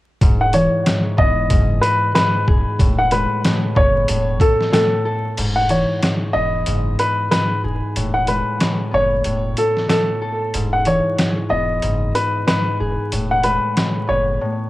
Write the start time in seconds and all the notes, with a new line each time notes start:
0.21 E1 G#2, kick, closed hi-hat
0.41 F#5
0.53 E3 C#5, closed hi-hat
0.86 G#2, cross-stick, snare, closed hi-hat
1.17 E1 B3 D#5, kick
1.50 F#1 G#2, kick, closed hi-hat
1.81 B4, closed hi-hat
2.15 G#2 B4, cross-stick, snare, closed hi-hat
2.48 E1 G#4, kick
2.79 E1 A2, kick, closed hi-hat
2.99 F#5
3.11 G#3 B4, closed hi-hat
3.45 A2, cross-stick, snare, closed hi-hat
3.75 F#1 B3 C#5, kick
4.08 E1 A2, closed hi-hat
4.40 A4, kick, closed hi-hat
4.61 snare
4.72 A2 A4, cross-stick, snare, closed hi-hat
5.05 A4
5.37 E1 G#2, closed hi-hat, crash
5.56 F#5
5.69 E3 C#5, closed hi-hat
6.02 G#2, cross-stick, snare, closed hi-hat
6.33 E1 B3 D#5
6.66 F#1 G#2, closed hi-hat
6.99 B4, closed hi-hat
7.31 G#2 B4, cross-stick, snare, closed hi-hat
7.64 E1 G#4
7.96 E1 A2, closed hi-hat
8.14 F#5
8.27 G#3 B4, closed hi-hat
8.61 A2, cross-stick, snare, closed hi-hat
8.91 F#1 B3 C#5
9.24 E1 A2, closed hi-hat
9.57 A4, closed hi-hat
9.77 snare
9.88 A2 A4, cross-stick, snare, closed hi-hat
10.22 A4
10.54 E1 G#2, closed hi-hat
10.73 F#5
10.85 E3 C#5, closed hi-hat
11.18 G#2, cross-stick, snare, closed hi-hat
11.49 E1 B3 D#5
11.82 F#1 G#2, closed hi-hat
12.15 B4, closed hi-hat
12.47 G#2 B4, cross-stick, snare, closed hi-hat
12.80 E1 G#4
13.12 E1 A2, closed hi-hat
13.31 F#5
13.43 G#3 B4, closed hi-hat
13.77 A2, cross-stick, snare, closed hi-hat
14.07 F#1 B3 C#5
14.41 A2